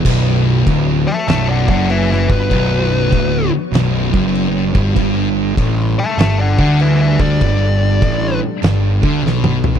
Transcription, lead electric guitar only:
1.07 E5 A5
1.28 E5 A5
1.49 D5 F#5
1.69 D5 F#5
1.90 B4 E5
2.12 B4 E5
2.32 B4
5.99 E5 A5
6.19 E5 A5
6.39 D5 F#5
6.59 D5 F#5
6.81 B4 E5
7.00 B4 E5
7.21 D5

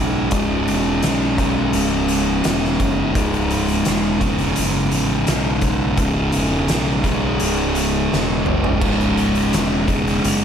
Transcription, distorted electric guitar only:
Already playing: C#2 G#2 C#3
0.31 C#2 G#2 C#3
1.37 C#2 G#2 C#3
3.13 C#2 G#2
3.17 C#3
4.20 C#2 G#2 C#3
5.97 C#2 G#2 C#3
7.04 C#2 G#2 C#3
8.81 C#2 G#2 C#3
9.87 C#2 G#2 C#3

